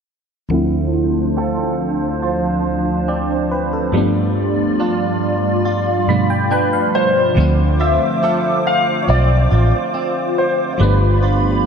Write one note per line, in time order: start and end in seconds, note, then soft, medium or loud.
0.49 3.89 D2 medium
0.49 4.01 D3 medium
0.49 3.90 F3 medium
0.49 3.90 A3 medium
0.49 3.91 C4 medium
0.49 3.90 D4 medium
0.49 3.90 C5 medium
0.54 3.91 E4 medium
1.37 3.07 C4 medium
1.37 2.22 F4 medium
1.37 4.03 A4 medium
2.22 4.80 F4 medium
3.08 4.02 C4 medium
3.08 3.49 D5 medium
3.51 3.72 B4 medium
3.73 4.14 A4 medium
3.92 6.03 G2 medium
3.92 6.04 F3 medium
3.92 7.37 G3 medium
3.92 7.33 G3 medium
3.92 6.05 A3 medium
3.92 6.05 B3 medium
3.92 7.33 F4 medium
3.92 7.33 D5 medium
3.97 6.06 D4 medium
4.80 6.51 D4 medium
4.80 5.65 F4 medium
5.65 7.79 F4 medium
6.08 7.36 G2 medium
6.08 7.37 B2 medium
6.08 7.34 F3 medium
6.08 7.35 A3 soft
6.08 7.38 D4 medium
6.08 6.29 B5 medium
6.30 6.50 G5 medium
6.51 8.22 D4 medium
6.51 6.96 B4 medium
6.51 6.71 G5 medium
6.73 7.33 F5 medium
6.95 7.83 C5 loud
7.35 7.97 D2 loud
7.35 10.87 D3 medium
7.35 10.75 F3 medium
7.35 10.76 A3 medium
7.35 10.76 C4 medium
7.35 11.66 F4 medium
7.35 10.76 C5 medium
7.35 10.76 D6 medium
7.40 10.77 F4 medium
7.80 8.23 F4 medium
7.80 8.68 E5 medium
8.23 9.07 C4 medium
8.23 9.51 F4 medium
8.23 10.89 A4 medium
8.67 9.00 F5 medium
9.02 9.09 C#5 medium
9.08 9.48 B1 loud
9.08 9.93 C4 medium
9.08 10.41 D5 medium
9.51 9.71 A1 medium
9.51 11.22 F4 medium
9.94 10.88 C4 medium
10.38 10.72 C5 medium
10.73 10.80 C5 medium
10.78 11.62 G1 loud
10.78 11.66 F3 medium
10.78 11.66 G3 medium
10.78 11.66 A3 medium
10.78 11.66 B3 medium
10.78 11.66 G4 medium
10.78 11.66 B4 medium
10.78 11.66 B5 medium
10.83 11.66 D4 medium
11.23 11.65 F4 medium